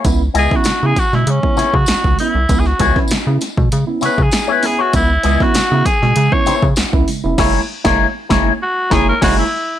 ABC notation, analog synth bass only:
X:1
M:4/4
L:1/16
Q:1/4=98
K:C#dor
V:1 name="Analog synth bass" clef=bass
C,,2 C,, z C, C, z B,, C, z C, C, C,, C,, z ^B,,, | C,,2 C,, z C, C, z B,, C, z C, C, z4 | C,,2 C,, z C, C, z B,, C, z C, C, C,, C,, z ^E,,, | F,,,2 z F,,,2 z F,,,2 z2 F,,,2 F,,,2 z2 |]